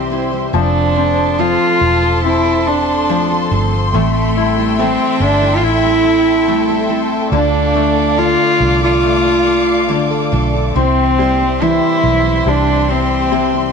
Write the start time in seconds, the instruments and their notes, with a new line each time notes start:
Already playing: fingered electric bass C2, grand piano C3 G3 C4, cello C4, steel-string acoustic guitar E4 C5, string section G4 C5 E5 C6
0.10 steel-string acoustic guitar G3 C4 E4 C5
0.32 steel-string acoustic guitar G3 C4 E4 C5
0.53 fingered electric bass F1, steel-string acoustic guitar F3 A3 C4 F4 A4, grand piano F3, cello D4, string section A4 A5 C6
0.95 steel-string acoustic guitar A3 C4 F4 A4, grand piano C4
1.17 steel-string acoustic guitar C4 F4 A4
1.38 steel-string acoustic guitar F3 A3 C4 F4 A4, grand piano F3, cello F4
1.81 fingered electric bass E1, steel-string acoustic guitar A3 C4 F4 A4
2.02 steel-string acoustic guitar C4 F4 A4
2.24 grand piano C4, cello E4
2.45 steel-string acoustic guitar C4 F4 A4
2.66 steel-string acoustic guitar A3 C4 F4 A4, cello D4
3.09 steel-string acoustic guitar F3 A3 C4 F4 A4, grand piano F3
3.30 steel-string acoustic guitar C4 F4 A4
3.51 fingered electric bass G1, steel-string acoustic guitar A3 C4 F4 A4
3.72 steel-string acoustic guitar C4 F4 A4
3.94 fingered electric bass A1, steel-string acoustic guitar A2 E3 G3 C4 E4 A4, grand piano A3, cello A3, string section A4 E5 G5
4.36 steel-string acoustic guitar G3 C4 E4 A4, grand piano E4
4.57 steel-string acoustic guitar G3 C4 E4 A4
4.79 steel-string acoustic guitar A2 E3 G3 C4 E4 A4, grand piano A3, cello C4
5.20 fingered electric bass G1, steel-string acoustic guitar G3 C4 E4 A4, cello D4
5.41 steel-string acoustic guitar G3 C4 E4 A4
5.57 cello F4
5.62 fingered electric bass A1, grand piano E4, cello E4
5.83 steel-string acoustic guitar G3 C4 E4 A4
6.04 steel-string acoustic guitar G3 C4 E4 A4
6.47 steel-string acoustic guitar A2 E3 G3 C4 E4 A4, grand piano A3
6.68 steel-string acoustic guitar G3 C4 E4 A4
6.89 steel-string acoustic guitar G3 C4 E4 A4
7.32 fingered electric bass D2, steel-string acoustic guitar D3 A3 D4 F4 A4, grand piano D3, cello D4, string section D5 F5 D6
7.75 steel-string acoustic guitar A3 D4 F4 A4, grand piano A3
7.96 steel-string acoustic guitar D4 F4 A4
8.18 steel-string acoustic guitar D3 A3 D4 F4 A4, grand piano D3, cello F4
8.60 fingered electric bass C2, steel-string acoustic guitar A3 D4 F4 A4
8.81 steel-string acoustic guitar D4 F4 A4, cello F4
9.04 grand piano A3
9.24 steel-string acoustic guitar D4 F4 A4
9.46 steel-string acoustic guitar A3 D4 F4 A4
9.88 steel-string acoustic guitar D3 A3 D4 F4 A4, grand piano D3
10.10 steel-string acoustic guitar D4 F4 A4
10.32 fingered electric bass B1, steel-string acoustic guitar A3 D4 F4 A4
10.53 steel-string acoustic guitar D4 F4 A4
10.75 fingered electric bass C2, steel-string acoustic guitar C3 E3 G3 C4 E4 C5, grand piano C4, cello C4, string section G4 C5 E5 C6
11.18 steel-string acoustic guitar G3 C4 E4 C5, grand piano G3
11.39 steel-string acoustic guitar G3 C4 E4 C5
11.61 steel-string acoustic guitar C3 E3 G3 C4 E4 C5, grand piano E3, cello E4
12.04 fingered electric bass B1, steel-string acoustic guitar G3 C4 E4 C5
12.25 steel-string acoustic guitar G3 C4 E4 C5
12.46 fingered electric bass C2, grand piano G3, cello D4
12.67 steel-string acoustic guitar G3 C4 E4 C5
12.89 steel-string acoustic guitar G3 C4 E4 C5, cello C4
13.31 grand piano C3, steel-string acoustic guitar C3 E3 G3 C4 E4 C5
13.53 steel-string acoustic guitar G3 C4 E4 C5